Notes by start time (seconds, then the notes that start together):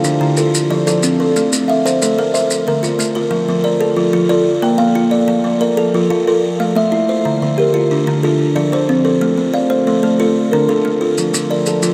Already playing: F4 A4
0.04 D3 D4, maracas
0.21 D3 E4
0.37 F4 A4, maracas
0.54 maracas
0.70 F3 D5
0.87 F3 A4, maracas
1.03 C4, maracas
1.20 A4
1.36 A3, maracas
1.53 A3, maracas
1.68 E5 F5
1.85 A4 C5, maracas
2.02 A3 A4, maracas
2.18 A3 A#4
2.34 C5 E5, maracas
2.50 maracas
2.67 D3 A#4
2.83 D3 F4, maracas
2.99 A3, maracas
3.15 F4 A#4
3.31 F3
3.49 F3
3.64 A#4 D5
3.81 A4
3.96 F3 F4
4.13 F3 F4
4.29 F4 A4 D5
4.62 A#3 A#4 G5
4.78 A#3 F5
4.95 F4
5.11 D5
5.28 F3
5.44 F3
5.61 A#4 D5
5.77 A4
5.94 F3 F4
6.10 F3 F4
6.27 F4 A4
6.60 A3 F5
6.75 A3 E5
6.92 E4
7.09 C5
7.25 D3
7.42 D3
7.58 G4 A#4
7.74 F4
7.91 D3 D4
8.07 D3 D4
8.23 D4 F4 A4
8.55 F3 F4 D5
8.72 F3 C5
8.89 C4
9.05 A4
9.21 A3
9.38 A3
9.54 D5 F5
9.70 C5
9.87 A3 A4
10.03 A3 A4
10.20 F4 A4 C5
10.51 D3 D4 A#4
10.69 D3 A4
10.85 A3
11.01 F4
11.18 F3, maracas
11.34 F3, maracas
11.50 A#4 D5
11.66 A4, maracas
11.82 F3 F4, maracas